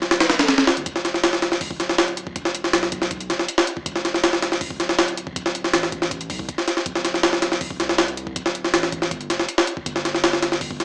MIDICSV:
0, 0, Header, 1, 3, 480
1, 0, Start_track
1, 0, Tempo, 375000
1, 1102, Time_signature, 4, 2, 24, 8
1, 13882, End_track
2, 0, Start_track
2, 0, Title_t, "Sub bass"
2, 0, Program_c, 0, 38
2, 0, Note_on_c, 0, 26, 89
2, 602, Note_off_c, 0, 26, 0
2, 983, Note_on_c, 0, 31, 79
2, 1090, Note_off_c, 0, 31, 0
2, 1103, Note_on_c, 0, 28, 102
2, 2283, Note_off_c, 0, 28, 0
2, 2302, Note_on_c, 0, 26, 82
2, 3003, Note_off_c, 0, 26, 0
2, 3019, Note_on_c, 0, 28, 101
2, 3482, Note_off_c, 0, 28, 0
2, 3500, Note_on_c, 0, 35, 92
2, 4220, Note_on_c, 0, 26, 87
2, 4239, Note_off_c, 0, 35, 0
2, 4437, Note_off_c, 0, 26, 0
2, 4939, Note_on_c, 0, 28, 104
2, 6122, Note_off_c, 0, 28, 0
2, 6140, Note_on_c, 0, 26, 83
2, 6842, Note_off_c, 0, 26, 0
2, 6862, Note_on_c, 0, 26, 103
2, 7323, Note_off_c, 0, 26, 0
2, 7338, Note_on_c, 0, 33, 89
2, 8061, Note_on_c, 0, 36, 96
2, 8081, Note_off_c, 0, 33, 0
2, 8278, Note_off_c, 0, 36, 0
2, 8781, Note_on_c, 0, 26, 103
2, 9963, Note_off_c, 0, 26, 0
2, 9983, Note_on_c, 0, 36, 80
2, 10684, Note_off_c, 0, 36, 0
2, 10703, Note_on_c, 0, 26, 101
2, 11163, Note_off_c, 0, 26, 0
2, 11182, Note_on_c, 0, 33, 95
2, 11663, Note_on_c, 0, 31, 94
2, 11682, Note_off_c, 0, 33, 0
2, 11904, Note_on_c, 0, 29, 86
2, 11923, Note_off_c, 0, 31, 0
2, 12119, Note_off_c, 0, 29, 0
2, 12623, Note_on_c, 0, 31, 104
2, 13803, Note_off_c, 0, 31, 0
2, 13821, Note_on_c, 0, 29, 81
2, 13882, Note_off_c, 0, 29, 0
2, 13882, End_track
3, 0, Start_track
3, 0, Title_t, "Drums"
3, 24, Note_on_c, 9, 38, 39
3, 142, Note_off_c, 9, 38, 0
3, 142, Note_on_c, 9, 38, 109
3, 142, Note_on_c, 9, 42, 81
3, 262, Note_off_c, 9, 38, 0
3, 262, Note_off_c, 9, 42, 0
3, 262, Note_on_c, 9, 38, 108
3, 262, Note_on_c, 9, 42, 79
3, 378, Note_off_c, 9, 38, 0
3, 378, Note_off_c, 9, 42, 0
3, 378, Note_on_c, 9, 38, 113
3, 378, Note_on_c, 9, 42, 82
3, 503, Note_off_c, 9, 38, 0
3, 503, Note_off_c, 9, 42, 0
3, 503, Note_on_c, 9, 38, 111
3, 503, Note_on_c, 9, 42, 77
3, 620, Note_off_c, 9, 38, 0
3, 620, Note_off_c, 9, 42, 0
3, 620, Note_on_c, 9, 38, 116
3, 620, Note_on_c, 9, 42, 87
3, 743, Note_off_c, 9, 38, 0
3, 743, Note_off_c, 9, 42, 0
3, 743, Note_on_c, 9, 38, 100
3, 743, Note_on_c, 9, 42, 77
3, 862, Note_off_c, 9, 38, 0
3, 862, Note_on_c, 9, 38, 112
3, 871, Note_off_c, 9, 42, 0
3, 985, Note_on_c, 9, 42, 63
3, 990, Note_off_c, 9, 38, 0
3, 1102, Note_off_c, 9, 42, 0
3, 1102, Note_on_c, 9, 36, 117
3, 1102, Note_on_c, 9, 42, 92
3, 1225, Note_on_c, 9, 38, 46
3, 1230, Note_off_c, 9, 36, 0
3, 1230, Note_off_c, 9, 42, 0
3, 1342, Note_off_c, 9, 38, 0
3, 1342, Note_on_c, 9, 38, 39
3, 1342, Note_on_c, 9, 42, 67
3, 1463, Note_off_c, 9, 38, 0
3, 1463, Note_on_c, 9, 38, 36
3, 1470, Note_off_c, 9, 42, 0
3, 1582, Note_off_c, 9, 38, 0
3, 1582, Note_on_c, 9, 38, 114
3, 1582, Note_on_c, 9, 42, 88
3, 1702, Note_off_c, 9, 38, 0
3, 1702, Note_on_c, 9, 38, 56
3, 1710, Note_off_c, 9, 42, 0
3, 1821, Note_off_c, 9, 38, 0
3, 1821, Note_on_c, 9, 38, 51
3, 1821, Note_on_c, 9, 42, 70
3, 1943, Note_off_c, 9, 38, 0
3, 1943, Note_on_c, 9, 38, 42
3, 1949, Note_off_c, 9, 42, 0
3, 2060, Note_on_c, 9, 46, 84
3, 2061, Note_on_c, 9, 36, 112
3, 2071, Note_off_c, 9, 38, 0
3, 2184, Note_off_c, 9, 36, 0
3, 2184, Note_on_c, 9, 36, 97
3, 2188, Note_off_c, 9, 46, 0
3, 2301, Note_on_c, 9, 38, 38
3, 2301, Note_on_c, 9, 42, 70
3, 2312, Note_off_c, 9, 36, 0
3, 2425, Note_off_c, 9, 38, 0
3, 2425, Note_on_c, 9, 38, 53
3, 2429, Note_off_c, 9, 42, 0
3, 2540, Note_off_c, 9, 38, 0
3, 2540, Note_on_c, 9, 38, 127
3, 2540, Note_on_c, 9, 42, 96
3, 2662, Note_off_c, 9, 42, 0
3, 2662, Note_on_c, 9, 42, 42
3, 2668, Note_off_c, 9, 38, 0
3, 2780, Note_off_c, 9, 42, 0
3, 2780, Note_on_c, 9, 42, 71
3, 2902, Note_on_c, 9, 36, 99
3, 2908, Note_off_c, 9, 42, 0
3, 3018, Note_on_c, 9, 42, 89
3, 3020, Note_off_c, 9, 36, 0
3, 3020, Note_on_c, 9, 36, 111
3, 3140, Note_on_c, 9, 38, 55
3, 3146, Note_off_c, 9, 42, 0
3, 3148, Note_off_c, 9, 36, 0
3, 3259, Note_on_c, 9, 42, 70
3, 3268, Note_off_c, 9, 38, 0
3, 3382, Note_on_c, 9, 38, 40
3, 3387, Note_off_c, 9, 42, 0
3, 3499, Note_off_c, 9, 38, 0
3, 3499, Note_on_c, 9, 38, 119
3, 3499, Note_on_c, 9, 42, 88
3, 3621, Note_off_c, 9, 38, 0
3, 3621, Note_on_c, 9, 38, 44
3, 3627, Note_off_c, 9, 42, 0
3, 3738, Note_on_c, 9, 42, 73
3, 3740, Note_on_c, 9, 36, 102
3, 3749, Note_off_c, 9, 38, 0
3, 3862, Note_on_c, 9, 38, 42
3, 3866, Note_off_c, 9, 42, 0
3, 3868, Note_off_c, 9, 36, 0
3, 3980, Note_on_c, 9, 42, 89
3, 3981, Note_on_c, 9, 36, 112
3, 3990, Note_off_c, 9, 38, 0
3, 4103, Note_off_c, 9, 42, 0
3, 4103, Note_on_c, 9, 42, 46
3, 4109, Note_off_c, 9, 36, 0
3, 4222, Note_off_c, 9, 42, 0
3, 4222, Note_on_c, 9, 38, 42
3, 4222, Note_on_c, 9, 42, 71
3, 4345, Note_off_c, 9, 38, 0
3, 4345, Note_on_c, 9, 38, 43
3, 4350, Note_off_c, 9, 42, 0
3, 4460, Note_on_c, 9, 42, 96
3, 4473, Note_off_c, 9, 38, 0
3, 4582, Note_on_c, 9, 38, 116
3, 4588, Note_off_c, 9, 42, 0
3, 4701, Note_on_c, 9, 42, 75
3, 4710, Note_off_c, 9, 38, 0
3, 4823, Note_on_c, 9, 36, 95
3, 4829, Note_off_c, 9, 42, 0
3, 4941, Note_off_c, 9, 36, 0
3, 4941, Note_on_c, 9, 36, 116
3, 4942, Note_on_c, 9, 42, 94
3, 5063, Note_on_c, 9, 38, 44
3, 5069, Note_off_c, 9, 36, 0
3, 5070, Note_off_c, 9, 42, 0
3, 5182, Note_off_c, 9, 38, 0
3, 5182, Note_on_c, 9, 38, 39
3, 5182, Note_on_c, 9, 42, 70
3, 5304, Note_off_c, 9, 38, 0
3, 5304, Note_on_c, 9, 38, 38
3, 5310, Note_off_c, 9, 42, 0
3, 5422, Note_off_c, 9, 38, 0
3, 5422, Note_on_c, 9, 38, 110
3, 5422, Note_on_c, 9, 42, 86
3, 5544, Note_off_c, 9, 38, 0
3, 5544, Note_on_c, 9, 38, 55
3, 5550, Note_off_c, 9, 42, 0
3, 5663, Note_off_c, 9, 38, 0
3, 5663, Note_on_c, 9, 38, 52
3, 5663, Note_on_c, 9, 42, 71
3, 5785, Note_off_c, 9, 38, 0
3, 5785, Note_on_c, 9, 38, 42
3, 5791, Note_off_c, 9, 42, 0
3, 5900, Note_on_c, 9, 46, 85
3, 5901, Note_on_c, 9, 36, 113
3, 5913, Note_off_c, 9, 38, 0
3, 6023, Note_off_c, 9, 36, 0
3, 6023, Note_on_c, 9, 36, 91
3, 6028, Note_off_c, 9, 46, 0
3, 6142, Note_on_c, 9, 38, 41
3, 6142, Note_on_c, 9, 42, 76
3, 6151, Note_off_c, 9, 36, 0
3, 6262, Note_off_c, 9, 38, 0
3, 6262, Note_on_c, 9, 38, 53
3, 6270, Note_off_c, 9, 42, 0
3, 6382, Note_off_c, 9, 38, 0
3, 6382, Note_on_c, 9, 38, 125
3, 6382, Note_on_c, 9, 42, 95
3, 6504, Note_off_c, 9, 42, 0
3, 6504, Note_on_c, 9, 42, 44
3, 6510, Note_off_c, 9, 38, 0
3, 6623, Note_off_c, 9, 42, 0
3, 6623, Note_on_c, 9, 42, 72
3, 6744, Note_on_c, 9, 36, 100
3, 6751, Note_off_c, 9, 42, 0
3, 6862, Note_off_c, 9, 36, 0
3, 6862, Note_on_c, 9, 36, 118
3, 6863, Note_on_c, 9, 42, 88
3, 6987, Note_on_c, 9, 38, 52
3, 6990, Note_off_c, 9, 36, 0
3, 6991, Note_off_c, 9, 42, 0
3, 7103, Note_on_c, 9, 42, 70
3, 7115, Note_off_c, 9, 38, 0
3, 7224, Note_on_c, 9, 38, 41
3, 7231, Note_off_c, 9, 42, 0
3, 7341, Note_off_c, 9, 38, 0
3, 7341, Note_on_c, 9, 38, 120
3, 7341, Note_on_c, 9, 42, 89
3, 7465, Note_off_c, 9, 38, 0
3, 7465, Note_on_c, 9, 38, 45
3, 7469, Note_off_c, 9, 42, 0
3, 7582, Note_on_c, 9, 36, 94
3, 7582, Note_on_c, 9, 42, 71
3, 7593, Note_off_c, 9, 38, 0
3, 7705, Note_on_c, 9, 38, 41
3, 7710, Note_off_c, 9, 36, 0
3, 7710, Note_off_c, 9, 42, 0
3, 7823, Note_on_c, 9, 36, 108
3, 7824, Note_on_c, 9, 42, 89
3, 7833, Note_off_c, 9, 38, 0
3, 7945, Note_off_c, 9, 42, 0
3, 7945, Note_on_c, 9, 42, 46
3, 7951, Note_off_c, 9, 36, 0
3, 8062, Note_on_c, 9, 36, 99
3, 8062, Note_on_c, 9, 46, 76
3, 8073, Note_off_c, 9, 42, 0
3, 8184, Note_off_c, 9, 36, 0
3, 8184, Note_on_c, 9, 36, 89
3, 8190, Note_off_c, 9, 46, 0
3, 8302, Note_off_c, 9, 36, 0
3, 8302, Note_on_c, 9, 36, 105
3, 8303, Note_on_c, 9, 42, 81
3, 8424, Note_on_c, 9, 38, 39
3, 8430, Note_off_c, 9, 36, 0
3, 8431, Note_off_c, 9, 42, 0
3, 8546, Note_off_c, 9, 38, 0
3, 8546, Note_on_c, 9, 38, 37
3, 8546, Note_on_c, 9, 42, 65
3, 8664, Note_off_c, 9, 38, 0
3, 8664, Note_on_c, 9, 38, 36
3, 8674, Note_off_c, 9, 42, 0
3, 8780, Note_on_c, 9, 42, 87
3, 8781, Note_on_c, 9, 36, 115
3, 8792, Note_off_c, 9, 38, 0
3, 8902, Note_on_c, 9, 38, 46
3, 8908, Note_off_c, 9, 42, 0
3, 8909, Note_off_c, 9, 36, 0
3, 9019, Note_off_c, 9, 38, 0
3, 9019, Note_on_c, 9, 38, 40
3, 9019, Note_on_c, 9, 42, 69
3, 9142, Note_off_c, 9, 38, 0
3, 9142, Note_on_c, 9, 38, 36
3, 9147, Note_off_c, 9, 42, 0
3, 9259, Note_off_c, 9, 38, 0
3, 9259, Note_on_c, 9, 38, 117
3, 9259, Note_on_c, 9, 42, 85
3, 9381, Note_off_c, 9, 38, 0
3, 9381, Note_on_c, 9, 38, 55
3, 9387, Note_off_c, 9, 42, 0
3, 9499, Note_off_c, 9, 38, 0
3, 9499, Note_on_c, 9, 38, 53
3, 9499, Note_on_c, 9, 42, 69
3, 9623, Note_off_c, 9, 38, 0
3, 9623, Note_on_c, 9, 38, 41
3, 9627, Note_off_c, 9, 42, 0
3, 9740, Note_on_c, 9, 46, 80
3, 9741, Note_on_c, 9, 36, 113
3, 9751, Note_off_c, 9, 38, 0
3, 9863, Note_off_c, 9, 36, 0
3, 9863, Note_on_c, 9, 36, 93
3, 9868, Note_off_c, 9, 46, 0
3, 9981, Note_on_c, 9, 38, 41
3, 9981, Note_on_c, 9, 42, 71
3, 9991, Note_off_c, 9, 36, 0
3, 10104, Note_off_c, 9, 38, 0
3, 10104, Note_on_c, 9, 38, 52
3, 10109, Note_off_c, 9, 42, 0
3, 10220, Note_off_c, 9, 38, 0
3, 10220, Note_on_c, 9, 38, 124
3, 10220, Note_on_c, 9, 42, 97
3, 10345, Note_off_c, 9, 42, 0
3, 10345, Note_on_c, 9, 42, 41
3, 10348, Note_off_c, 9, 38, 0
3, 10462, Note_off_c, 9, 42, 0
3, 10462, Note_on_c, 9, 42, 73
3, 10584, Note_on_c, 9, 36, 94
3, 10590, Note_off_c, 9, 42, 0
3, 10701, Note_on_c, 9, 42, 90
3, 10702, Note_off_c, 9, 36, 0
3, 10702, Note_on_c, 9, 36, 108
3, 10826, Note_on_c, 9, 38, 53
3, 10829, Note_off_c, 9, 42, 0
3, 10830, Note_off_c, 9, 36, 0
3, 10943, Note_on_c, 9, 42, 72
3, 10954, Note_off_c, 9, 38, 0
3, 11065, Note_on_c, 9, 38, 39
3, 11071, Note_off_c, 9, 42, 0
3, 11183, Note_off_c, 9, 38, 0
3, 11183, Note_on_c, 9, 38, 113
3, 11183, Note_on_c, 9, 42, 91
3, 11305, Note_off_c, 9, 38, 0
3, 11305, Note_on_c, 9, 38, 48
3, 11311, Note_off_c, 9, 42, 0
3, 11423, Note_on_c, 9, 36, 101
3, 11423, Note_on_c, 9, 42, 68
3, 11433, Note_off_c, 9, 38, 0
3, 11545, Note_on_c, 9, 38, 39
3, 11551, Note_off_c, 9, 36, 0
3, 11551, Note_off_c, 9, 42, 0
3, 11664, Note_on_c, 9, 36, 109
3, 11664, Note_on_c, 9, 42, 88
3, 11673, Note_off_c, 9, 38, 0
3, 11784, Note_off_c, 9, 42, 0
3, 11784, Note_on_c, 9, 42, 42
3, 11792, Note_off_c, 9, 36, 0
3, 11904, Note_off_c, 9, 42, 0
3, 11904, Note_on_c, 9, 38, 42
3, 11904, Note_on_c, 9, 42, 74
3, 12025, Note_off_c, 9, 38, 0
3, 12025, Note_on_c, 9, 38, 46
3, 12032, Note_off_c, 9, 42, 0
3, 12142, Note_on_c, 9, 42, 95
3, 12153, Note_off_c, 9, 38, 0
3, 12263, Note_on_c, 9, 38, 112
3, 12270, Note_off_c, 9, 42, 0
3, 12382, Note_on_c, 9, 42, 73
3, 12391, Note_off_c, 9, 38, 0
3, 12505, Note_on_c, 9, 36, 97
3, 12510, Note_off_c, 9, 42, 0
3, 12623, Note_off_c, 9, 36, 0
3, 12623, Note_on_c, 9, 36, 117
3, 12623, Note_on_c, 9, 42, 92
3, 12746, Note_on_c, 9, 38, 45
3, 12751, Note_off_c, 9, 36, 0
3, 12751, Note_off_c, 9, 42, 0
3, 12865, Note_off_c, 9, 38, 0
3, 12865, Note_on_c, 9, 38, 39
3, 12865, Note_on_c, 9, 42, 71
3, 12986, Note_off_c, 9, 38, 0
3, 12986, Note_on_c, 9, 38, 37
3, 12993, Note_off_c, 9, 42, 0
3, 13104, Note_off_c, 9, 38, 0
3, 13104, Note_on_c, 9, 38, 120
3, 13104, Note_on_c, 9, 42, 89
3, 13226, Note_off_c, 9, 38, 0
3, 13226, Note_on_c, 9, 38, 55
3, 13232, Note_off_c, 9, 42, 0
3, 13344, Note_off_c, 9, 38, 0
3, 13344, Note_on_c, 9, 38, 51
3, 13344, Note_on_c, 9, 42, 68
3, 13465, Note_off_c, 9, 38, 0
3, 13465, Note_on_c, 9, 38, 40
3, 13472, Note_off_c, 9, 42, 0
3, 13582, Note_on_c, 9, 46, 81
3, 13583, Note_on_c, 9, 36, 112
3, 13593, Note_off_c, 9, 38, 0
3, 13704, Note_off_c, 9, 36, 0
3, 13704, Note_on_c, 9, 36, 95
3, 13710, Note_off_c, 9, 46, 0
3, 13825, Note_on_c, 9, 38, 36
3, 13825, Note_on_c, 9, 42, 67
3, 13832, Note_off_c, 9, 36, 0
3, 13882, Note_off_c, 9, 38, 0
3, 13882, Note_off_c, 9, 42, 0
3, 13882, End_track
0, 0, End_of_file